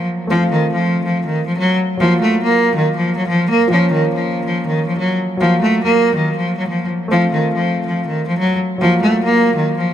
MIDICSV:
0, 0, Header, 1, 3, 480
1, 0, Start_track
1, 0, Tempo, 425532
1, 340, Time_signature, 4, 2, 24, 8
1, 11208, End_track
2, 0, Start_track
2, 0, Title_t, "Grand piano"
2, 0, Program_c, 0, 0
2, 0, Control_c, 0, 64, 127
2, 0, Note_on_c, 0, 54, 69
2, 0, Note_on_c, 0, 58, 65
2, 0, Note_on_c, 0, 65, 71
2, 281, Note_off_c, 0, 54, 0
2, 298, Note_off_c, 0, 58, 0
2, 309, Note_on_c, 0, 57, 68
2, 314, Note_off_c, 0, 65, 0
2, 342, Note_on_c, 0, 60, 56
2, 355, Control_c, 0, 64, 0
2, 375, Note_on_c, 0, 65, 81
2, 533, Control_c, 0, 64, 127
2, 2205, Note_off_c, 0, 57, 0
2, 2222, Note_off_c, 0, 60, 0
2, 2227, Note_on_c, 0, 54, 65
2, 2239, Note_off_c, 0, 65, 0
2, 2260, Note_on_c, 0, 58, 59
2, 2276, Control_c, 0, 64, 0
2, 2293, Note_on_c, 0, 65, 80
2, 2448, Control_c, 0, 64, 127
2, 4125, Note_off_c, 0, 54, 0
2, 4141, Note_off_c, 0, 58, 0
2, 4146, Note_on_c, 0, 53, 71
2, 4158, Note_off_c, 0, 65, 0
2, 4179, Note_on_c, 0, 58, 63
2, 4193, Control_c, 0, 64, 0
2, 4212, Note_on_c, 0, 61, 74
2, 4387, Control_c, 0, 64, 127
2, 6044, Note_off_c, 0, 53, 0
2, 6061, Note_off_c, 0, 58, 0
2, 6061, Note_on_c, 0, 54, 73
2, 6078, Note_off_c, 0, 61, 0
2, 6093, Note_on_c, 0, 58, 67
2, 6113, Control_c, 0, 64, 0
2, 6126, Note_on_c, 0, 65, 70
2, 6342, Control_c, 0, 64, 127
2, 7961, Note_off_c, 0, 54, 0
2, 7978, Note_off_c, 0, 58, 0
2, 7988, Note_on_c, 0, 57, 68
2, 7994, Note_off_c, 0, 65, 0
2, 8021, Note_on_c, 0, 60, 57
2, 8032, Control_c, 0, 64, 0
2, 8053, Note_on_c, 0, 65, 81
2, 8216, Control_c, 0, 64, 127
2, 9885, Note_off_c, 0, 57, 0
2, 9902, Note_off_c, 0, 60, 0
2, 9906, Note_on_c, 0, 54, 68
2, 9918, Note_off_c, 0, 65, 0
2, 9939, Note_on_c, 0, 58, 60
2, 9956, Control_c, 0, 64, 0
2, 9971, Note_on_c, 0, 65, 80
2, 10128, Control_c, 0, 64, 127
2, 11208, Note_off_c, 0, 54, 0
2, 11208, Note_off_c, 0, 58, 0
2, 11208, Note_off_c, 0, 65, 0
2, 11208, End_track
3, 0, Start_track
3, 0, Title_t, "Cello"
3, 0, Program_c, 1, 42
3, 341, Note_on_c, 1, 53, 114
3, 551, Note_off_c, 1, 53, 0
3, 580, Note_on_c, 1, 51, 86
3, 791, Note_off_c, 1, 51, 0
3, 820, Note_on_c, 1, 53, 83
3, 1158, Note_off_c, 1, 53, 0
3, 1182, Note_on_c, 1, 53, 69
3, 1392, Note_off_c, 1, 53, 0
3, 1417, Note_on_c, 1, 51, 75
3, 1628, Note_off_c, 1, 51, 0
3, 1656, Note_on_c, 1, 53, 79
3, 1763, Note_off_c, 1, 53, 0
3, 1778, Note_on_c, 1, 54, 88
3, 1989, Note_off_c, 1, 54, 0
3, 2259, Note_on_c, 1, 53, 108
3, 2470, Note_off_c, 1, 53, 0
3, 2498, Note_on_c, 1, 57, 87
3, 2709, Note_off_c, 1, 57, 0
3, 2743, Note_on_c, 1, 58, 96
3, 3080, Note_off_c, 1, 58, 0
3, 3103, Note_on_c, 1, 51, 83
3, 3312, Note_off_c, 1, 51, 0
3, 3340, Note_on_c, 1, 53, 79
3, 3550, Note_off_c, 1, 53, 0
3, 3572, Note_on_c, 1, 54, 78
3, 3681, Note_off_c, 1, 54, 0
3, 3696, Note_on_c, 1, 53, 89
3, 3908, Note_off_c, 1, 53, 0
3, 3944, Note_on_c, 1, 58, 81
3, 4152, Note_off_c, 1, 58, 0
3, 4180, Note_on_c, 1, 53, 103
3, 4390, Note_off_c, 1, 53, 0
3, 4423, Note_on_c, 1, 51, 90
3, 4632, Note_off_c, 1, 51, 0
3, 4664, Note_on_c, 1, 53, 79
3, 5000, Note_off_c, 1, 53, 0
3, 5017, Note_on_c, 1, 53, 76
3, 5229, Note_off_c, 1, 53, 0
3, 5261, Note_on_c, 1, 51, 79
3, 5471, Note_off_c, 1, 51, 0
3, 5497, Note_on_c, 1, 53, 75
3, 5604, Note_off_c, 1, 53, 0
3, 5616, Note_on_c, 1, 54, 78
3, 5828, Note_off_c, 1, 54, 0
3, 6099, Note_on_c, 1, 53, 111
3, 6310, Note_off_c, 1, 53, 0
3, 6338, Note_on_c, 1, 57, 88
3, 6549, Note_off_c, 1, 57, 0
3, 6585, Note_on_c, 1, 58, 99
3, 6921, Note_off_c, 1, 58, 0
3, 6937, Note_on_c, 1, 51, 81
3, 7149, Note_off_c, 1, 51, 0
3, 7181, Note_on_c, 1, 53, 76
3, 7391, Note_off_c, 1, 53, 0
3, 7421, Note_on_c, 1, 54, 71
3, 7526, Note_off_c, 1, 54, 0
3, 7536, Note_on_c, 1, 53, 72
3, 7748, Note_off_c, 1, 53, 0
3, 8021, Note_on_c, 1, 53, 110
3, 8231, Note_off_c, 1, 53, 0
3, 8260, Note_on_c, 1, 51, 84
3, 8470, Note_off_c, 1, 51, 0
3, 8500, Note_on_c, 1, 53, 84
3, 8838, Note_off_c, 1, 53, 0
3, 8862, Note_on_c, 1, 53, 70
3, 9072, Note_off_c, 1, 53, 0
3, 9095, Note_on_c, 1, 51, 76
3, 9308, Note_off_c, 1, 51, 0
3, 9335, Note_on_c, 1, 53, 80
3, 9442, Note_off_c, 1, 53, 0
3, 9455, Note_on_c, 1, 54, 87
3, 9668, Note_off_c, 1, 54, 0
3, 9937, Note_on_c, 1, 53, 106
3, 10149, Note_off_c, 1, 53, 0
3, 10176, Note_on_c, 1, 57, 85
3, 10388, Note_off_c, 1, 57, 0
3, 10422, Note_on_c, 1, 58, 99
3, 10759, Note_off_c, 1, 58, 0
3, 10781, Note_on_c, 1, 51, 83
3, 10991, Note_off_c, 1, 51, 0
3, 11020, Note_on_c, 1, 53, 78
3, 11208, Note_off_c, 1, 53, 0
3, 11208, End_track
0, 0, End_of_file